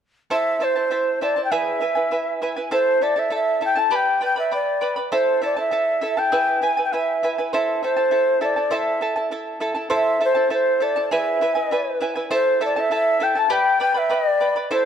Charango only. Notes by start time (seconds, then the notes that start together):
0.30 E4 A4 C5 E5 A5
0.60 E4 C5 E5 A5
0.76 E4 C5 A5
0.91 E4 C5 E5 A5
1.21 E4 C5 E5 A5
1.36 E4 C5 A5
1.52 E4 G#4 B4 E5 G#5
1.81 E4 B4 E5 G#5
1.95 E4 B4 G#5
2.11 E4 B4 E5 G#5
2.42 E4 B4 E5 G#5
2.56 E4 B4 G#5
2.71 E4 A4 C5 E5 A5
3.01 E4 A4 E5 A5
3.16 E4 A4 A5
3.30 E4 A4 E5 A5
3.61 E4 A4 E5 A5
3.75 E4 A4 A5
3.90 G4 B4 D5 G5 B5
4.21 B4 D5 G5 B5
4.36 B4 D5 B5
4.51 B4 D5 G5 B5
4.81 B4 D5 G5 B5
4.96 B4 D5 B5
5.12 E4 A4 C5 E5 A5
5.42 E4 A4 E5 A5
5.56 E4 A4 A5
5.71 E4 A4 E5 A5
6.01 E4 A4 E5 A5
6.17 E4 A4 A5
6.32 E4 G#4 B4 E5
6.62 E4 B4 E5 G#5
6.77 E4 B4 G#5
6.93 E4 B4 E5 G#5
7.23 E4 B4 E5 G#5
7.38 E4 B4 G#5
7.53 E4 A4 C5 E5 A5
7.83 E4 A4 E5 A5
7.97 E4 A4 A5
8.11 E4 A4 E5 A5
8.41 E4 A4 E5 A5
8.56 E4 A4 A5
8.71 E4 A4 C5 E5 A5
9.01 E4 A4 E5 A5
9.16 E4 A4 A5
9.31 E4 A4 E5 A5
9.60 E4 A4 E5 A5
9.75 E4 A4 A5
9.90 E4 A4 C5 E5 A5
10.20 E4 A4 E5 A5
10.35 E4 A4 A5
10.50 E4 A4 E5 A5
10.80 E4 A4 E5 A5
10.96 E4 A4 A5
11.11 E4 G#4 B4 E5 G#5
11.41 E4 B4 E5 G#5
11.55 E4 B4 G#5
11.71 E4 B4 E5 G#5
12.01 E4 B4 E5 G#5
12.16 E4 B4 G#5
12.31 E4 A4 C5 E5 A5
12.61 E4 A4 E5 A5
12.76 E4 A4 A5
12.91 E4 A4 E5 A5
13.20 E4 A4 E5 A5
13.35 E4 A4 A5
13.50 G4 B4 D5 G5 B5
13.80 B4 D5 G5 B5
13.94 B4 D5 B5
14.09 B4 D5 G5 B5
14.40 B4 D5 G5 B5
14.56 B4 D5 B5
14.71 E4 A4 C5 E5 A5